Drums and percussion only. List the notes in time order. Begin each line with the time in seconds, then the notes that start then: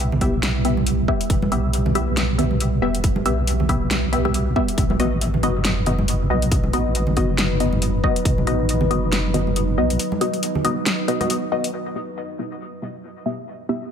0.12 low conga
0.21 kick, closed hi-hat, high conga
0.43 snare, closed hi-hat
0.65 closed hi-hat
0.77 high conga
0.87 closed hi-hat
1.08 kick
1.21 closed hi-hat
1.30 kick, closed hi-hat
1.42 high conga
1.52 closed hi-hat
1.73 closed hi-hat
1.86 low conga
1.95 closed hi-hat, high conga
2.17 snare, closed hi-hat
2.39 closed hi-hat, low conga
2.51 high conga
2.60 closed hi-hat
2.95 closed hi-hat
3.04 kick, closed hi-hat
3.16 high conga
3.26 closed hi-hat
3.47 closed hi-hat
3.60 low conga
3.69 kick, closed hi-hat, high conga
3.91 snare, closed hi-hat
4.13 closed hi-hat
4.25 high conga
4.34 closed hi-hat
4.56 kick
4.68 closed hi-hat
4.78 kick, closed hi-hat
4.90 high conga
5.00 closed hi-hat
5.21 closed hi-hat
5.34 low conga
5.43 closed hi-hat, high conga
5.65 snare, closed hi-hat
5.86 closed hi-hat, low conga
5.99 high conga
6.08 closed hi-hat
6.42 closed hi-hat
6.52 kick, closed hi-hat
6.64 high conga
6.73 closed hi-hat
6.95 closed hi-hat
7.07 low conga
7.16 kick, closed hi-hat, high conga
7.38 snare, closed hi-hat
7.60 closed hi-hat
7.73 high conga
7.82 closed hi-hat
8.04 kick
8.16 closed hi-hat
8.25 kick, closed hi-hat
8.38 high conga
8.47 closed hi-hat
8.69 closed hi-hat
8.81 low conga
8.91 closed hi-hat, high conga
9.12 snare, closed hi-hat
9.34 closed hi-hat, low conga
9.47 high conga
9.56 closed hi-hat
9.90 closed hi-hat
9.99 closed hi-hat
10.12 high conga
10.21 closed hi-hat
10.34 closed hi-hat
10.43 closed hi-hat
10.55 low conga
10.65 closed hi-hat, high conga
10.86 snare, closed hi-hat
11.08 closed hi-hat
11.21 closed hi-hat, high conga
11.30 closed hi-hat
11.64 closed hi-hat